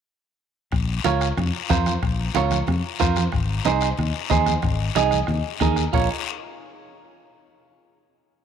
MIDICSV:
0, 0, Header, 1, 5, 480
1, 0, Start_track
1, 0, Key_signature, -5, "minor"
1, 0, Tempo, 325203
1, 1060, Time_signature, 4, 2, 24, 8
1, 12469, End_track
2, 0, Start_track
2, 0, Title_t, "Clean electric guitar"
2, 0, Program_c, 0, 27
2, 1543, Note_on_c, 0, 65, 83
2, 1553, Note_on_c, 0, 70, 73
2, 1565, Note_on_c, 0, 73, 79
2, 1881, Note_off_c, 0, 65, 0
2, 1881, Note_off_c, 0, 70, 0
2, 1884, Note_off_c, 0, 73, 0
2, 2505, Note_on_c, 0, 65, 73
2, 2511, Note_on_c, 0, 70, 66
2, 2523, Note_on_c, 0, 72, 85
2, 2841, Note_off_c, 0, 65, 0
2, 2844, Note_off_c, 0, 70, 0
2, 2850, Note_off_c, 0, 72, 0
2, 3475, Note_on_c, 0, 65, 82
2, 3484, Note_on_c, 0, 70, 76
2, 3495, Note_on_c, 0, 73, 81
2, 3806, Note_off_c, 0, 65, 0
2, 3812, Note_off_c, 0, 70, 0
2, 3814, Note_off_c, 0, 73, 0
2, 4425, Note_on_c, 0, 65, 77
2, 4432, Note_on_c, 0, 70, 76
2, 4438, Note_on_c, 0, 72, 90
2, 4763, Note_off_c, 0, 65, 0
2, 4766, Note_off_c, 0, 70, 0
2, 4769, Note_off_c, 0, 72, 0
2, 5397, Note_on_c, 0, 63, 88
2, 5409, Note_on_c, 0, 68, 63
2, 5415, Note_on_c, 0, 72, 89
2, 5730, Note_off_c, 0, 63, 0
2, 5732, Note_off_c, 0, 68, 0
2, 5738, Note_off_c, 0, 72, 0
2, 6346, Note_on_c, 0, 63, 76
2, 6356, Note_on_c, 0, 68, 74
2, 6368, Note_on_c, 0, 72, 75
2, 6684, Note_off_c, 0, 63, 0
2, 6690, Note_off_c, 0, 68, 0
2, 6691, Note_off_c, 0, 72, 0
2, 7321, Note_on_c, 0, 63, 80
2, 7329, Note_on_c, 0, 68, 83
2, 7339, Note_on_c, 0, 75, 73
2, 7651, Note_off_c, 0, 63, 0
2, 7655, Note_off_c, 0, 68, 0
2, 7657, Note_off_c, 0, 75, 0
2, 8283, Note_on_c, 0, 63, 77
2, 8289, Note_on_c, 0, 68, 70
2, 8294, Note_on_c, 0, 70, 70
2, 8611, Note_off_c, 0, 63, 0
2, 8614, Note_off_c, 0, 70, 0
2, 8615, Note_off_c, 0, 68, 0
2, 8751, Note_on_c, 0, 65, 77
2, 8764, Note_on_c, 0, 70, 66
2, 8774, Note_on_c, 0, 73, 78
2, 8976, Note_off_c, 0, 65, 0
2, 8978, Note_off_c, 0, 70, 0
2, 8978, Note_off_c, 0, 73, 0
2, 12469, End_track
3, 0, Start_track
3, 0, Title_t, "Fingered electric bass"
3, 0, Program_c, 1, 33
3, 1070, Note_on_c, 1, 34, 99
3, 1451, Note_off_c, 1, 34, 0
3, 1548, Note_on_c, 1, 37, 87
3, 1930, Note_off_c, 1, 37, 0
3, 2026, Note_on_c, 1, 41, 98
3, 2217, Note_off_c, 1, 41, 0
3, 2512, Note_on_c, 1, 41, 102
3, 2893, Note_off_c, 1, 41, 0
3, 2989, Note_on_c, 1, 34, 101
3, 3372, Note_off_c, 1, 34, 0
3, 3478, Note_on_c, 1, 37, 90
3, 3858, Note_off_c, 1, 37, 0
3, 3953, Note_on_c, 1, 41, 99
3, 4143, Note_off_c, 1, 41, 0
3, 4442, Note_on_c, 1, 41, 100
3, 4821, Note_off_c, 1, 41, 0
3, 4921, Note_on_c, 1, 32, 102
3, 5300, Note_off_c, 1, 32, 0
3, 5395, Note_on_c, 1, 36, 93
3, 5777, Note_off_c, 1, 36, 0
3, 5881, Note_on_c, 1, 39, 101
3, 6068, Note_off_c, 1, 39, 0
3, 6358, Note_on_c, 1, 39, 104
3, 6739, Note_off_c, 1, 39, 0
3, 6836, Note_on_c, 1, 32, 107
3, 7217, Note_off_c, 1, 32, 0
3, 7317, Note_on_c, 1, 36, 83
3, 7697, Note_off_c, 1, 36, 0
3, 7793, Note_on_c, 1, 39, 98
3, 7983, Note_off_c, 1, 39, 0
3, 8277, Note_on_c, 1, 39, 98
3, 8657, Note_off_c, 1, 39, 0
3, 8758, Note_on_c, 1, 34, 89
3, 8976, Note_off_c, 1, 34, 0
3, 12469, End_track
4, 0, Start_track
4, 0, Title_t, "Two-headed folk drums"
4, 1066, Note_on_c, 9, 37, 79
4, 1067, Note_on_c, 9, 36, 85
4, 1214, Note_off_c, 9, 36, 0
4, 1214, Note_off_c, 9, 37, 0
4, 1542, Note_on_c, 9, 37, 84
4, 1690, Note_off_c, 9, 37, 0
4, 1789, Note_on_c, 9, 37, 80
4, 1937, Note_off_c, 9, 37, 0
4, 2029, Note_on_c, 9, 37, 86
4, 2177, Note_off_c, 9, 37, 0
4, 2509, Note_on_c, 9, 37, 77
4, 2511, Note_on_c, 9, 36, 81
4, 2656, Note_off_c, 9, 37, 0
4, 2658, Note_off_c, 9, 36, 0
4, 2752, Note_on_c, 9, 37, 73
4, 2900, Note_off_c, 9, 37, 0
4, 2990, Note_on_c, 9, 36, 81
4, 2991, Note_on_c, 9, 37, 82
4, 3138, Note_off_c, 9, 36, 0
4, 3138, Note_off_c, 9, 37, 0
4, 3471, Note_on_c, 9, 37, 82
4, 3619, Note_off_c, 9, 37, 0
4, 3715, Note_on_c, 9, 37, 80
4, 3863, Note_off_c, 9, 37, 0
4, 3958, Note_on_c, 9, 37, 80
4, 4106, Note_off_c, 9, 37, 0
4, 4437, Note_on_c, 9, 36, 82
4, 4438, Note_on_c, 9, 37, 83
4, 4584, Note_off_c, 9, 36, 0
4, 4585, Note_off_c, 9, 37, 0
4, 4674, Note_on_c, 9, 37, 74
4, 4821, Note_off_c, 9, 37, 0
4, 4906, Note_on_c, 9, 37, 81
4, 4914, Note_on_c, 9, 36, 78
4, 5054, Note_off_c, 9, 37, 0
4, 5062, Note_off_c, 9, 36, 0
4, 5395, Note_on_c, 9, 37, 79
4, 5542, Note_off_c, 9, 37, 0
4, 5641, Note_on_c, 9, 37, 86
4, 5789, Note_off_c, 9, 37, 0
4, 5889, Note_on_c, 9, 37, 80
4, 6037, Note_off_c, 9, 37, 0
4, 6355, Note_on_c, 9, 37, 81
4, 6357, Note_on_c, 9, 36, 79
4, 6502, Note_off_c, 9, 37, 0
4, 6504, Note_off_c, 9, 36, 0
4, 6586, Note_on_c, 9, 37, 81
4, 6734, Note_off_c, 9, 37, 0
4, 6830, Note_on_c, 9, 37, 78
4, 6832, Note_on_c, 9, 36, 83
4, 6978, Note_off_c, 9, 37, 0
4, 6980, Note_off_c, 9, 36, 0
4, 7310, Note_on_c, 9, 37, 82
4, 7457, Note_off_c, 9, 37, 0
4, 7541, Note_on_c, 9, 37, 79
4, 7689, Note_off_c, 9, 37, 0
4, 7779, Note_on_c, 9, 37, 83
4, 7927, Note_off_c, 9, 37, 0
4, 8267, Note_on_c, 9, 37, 78
4, 8273, Note_on_c, 9, 36, 86
4, 8414, Note_off_c, 9, 37, 0
4, 8420, Note_off_c, 9, 36, 0
4, 8507, Note_on_c, 9, 37, 75
4, 8654, Note_off_c, 9, 37, 0
4, 8758, Note_on_c, 9, 36, 96
4, 8905, Note_off_c, 9, 36, 0
4, 12469, End_track
5, 0, Start_track
5, 0, Title_t, "Drums"
5, 1058, Note_on_c, 9, 74, 69
5, 1206, Note_off_c, 9, 74, 0
5, 1541, Note_on_c, 9, 63, 91
5, 1543, Note_on_c, 9, 73, 73
5, 1688, Note_off_c, 9, 63, 0
5, 1691, Note_off_c, 9, 73, 0
5, 1785, Note_on_c, 9, 73, 66
5, 1933, Note_off_c, 9, 73, 0
5, 2036, Note_on_c, 9, 63, 37
5, 2036, Note_on_c, 9, 64, 88
5, 2037, Note_on_c, 9, 74, 72
5, 2183, Note_off_c, 9, 63, 0
5, 2183, Note_off_c, 9, 64, 0
5, 2185, Note_off_c, 9, 74, 0
5, 2281, Note_on_c, 9, 63, 34
5, 2428, Note_off_c, 9, 63, 0
5, 2509, Note_on_c, 9, 73, 73
5, 2515, Note_on_c, 9, 63, 78
5, 2657, Note_off_c, 9, 73, 0
5, 2663, Note_off_c, 9, 63, 0
5, 2742, Note_on_c, 9, 63, 69
5, 2749, Note_on_c, 9, 73, 69
5, 2890, Note_off_c, 9, 63, 0
5, 2896, Note_off_c, 9, 73, 0
5, 2993, Note_on_c, 9, 74, 67
5, 3140, Note_off_c, 9, 74, 0
5, 3461, Note_on_c, 9, 73, 68
5, 3464, Note_on_c, 9, 63, 98
5, 3609, Note_off_c, 9, 73, 0
5, 3611, Note_off_c, 9, 63, 0
5, 3699, Note_on_c, 9, 63, 68
5, 3703, Note_on_c, 9, 73, 72
5, 3847, Note_off_c, 9, 63, 0
5, 3850, Note_off_c, 9, 73, 0
5, 3938, Note_on_c, 9, 74, 70
5, 3952, Note_on_c, 9, 63, 34
5, 3952, Note_on_c, 9, 64, 87
5, 4086, Note_off_c, 9, 74, 0
5, 4099, Note_off_c, 9, 63, 0
5, 4099, Note_off_c, 9, 64, 0
5, 4195, Note_on_c, 9, 63, 34
5, 4343, Note_off_c, 9, 63, 0
5, 4421, Note_on_c, 9, 73, 75
5, 4431, Note_on_c, 9, 63, 86
5, 4569, Note_off_c, 9, 73, 0
5, 4578, Note_off_c, 9, 63, 0
5, 4663, Note_on_c, 9, 73, 75
5, 4678, Note_on_c, 9, 63, 65
5, 4810, Note_off_c, 9, 73, 0
5, 4826, Note_off_c, 9, 63, 0
5, 4900, Note_on_c, 9, 74, 69
5, 5047, Note_off_c, 9, 74, 0
5, 5382, Note_on_c, 9, 73, 70
5, 5389, Note_on_c, 9, 63, 97
5, 5530, Note_off_c, 9, 73, 0
5, 5536, Note_off_c, 9, 63, 0
5, 5619, Note_on_c, 9, 73, 74
5, 5767, Note_off_c, 9, 73, 0
5, 5867, Note_on_c, 9, 74, 73
5, 5880, Note_on_c, 9, 63, 35
5, 5880, Note_on_c, 9, 64, 82
5, 6015, Note_off_c, 9, 74, 0
5, 6028, Note_off_c, 9, 63, 0
5, 6028, Note_off_c, 9, 64, 0
5, 6126, Note_on_c, 9, 63, 36
5, 6274, Note_off_c, 9, 63, 0
5, 6344, Note_on_c, 9, 73, 68
5, 6359, Note_on_c, 9, 63, 80
5, 6491, Note_off_c, 9, 73, 0
5, 6506, Note_off_c, 9, 63, 0
5, 6589, Note_on_c, 9, 63, 73
5, 6592, Note_on_c, 9, 73, 72
5, 6736, Note_off_c, 9, 63, 0
5, 6739, Note_off_c, 9, 73, 0
5, 6824, Note_on_c, 9, 74, 75
5, 6830, Note_on_c, 9, 64, 74
5, 6972, Note_off_c, 9, 74, 0
5, 6978, Note_off_c, 9, 64, 0
5, 7317, Note_on_c, 9, 73, 74
5, 7319, Note_on_c, 9, 63, 91
5, 7465, Note_off_c, 9, 73, 0
5, 7467, Note_off_c, 9, 63, 0
5, 7554, Note_on_c, 9, 73, 71
5, 7564, Note_on_c, 9, 63, 70
5, 7702, Note_off_c, 9, 73, 0
5, 7712, Note_off_c, 9, 63, 0
5, 7800, Note_on_c, 9, 74, 68
5, 7811, Note_on_c, 9, 63, 35
5, 7811, Note_on_c, 9, 64, 85
5, 7948, Note_off_c, 9, 74, 0
5, 7958, Note_off_c, 9, 63, 0
5, 7958, Note_off_c, 9, 64, 0
5, 8060, Note_on_c, 9, 63, 38
5, 8208, Note_off_c, 9, 63, 0
5, 8279, Note_on_c, 9, 73, 74
5, 8287, Note_on_c, 9, 63, 82
5, 8427, Note_off_c, 9, 73, 0
5, 8435, Note_off_c, 9, 63, 0
5, 8510, Note_on_c, 9, 73, 69
5, 8658, Note_off_c, 9, 73, 0
5, 8757, Note_on_c, 9, 74, 101
5, 8764, Note_on_c, 9, 64, 98
5, 8905, Note_off_c, 9, 74, 0
5, 8912, Note_off_c, 9, 64, 0
5, 12469, End_track
0, 0, End_of_file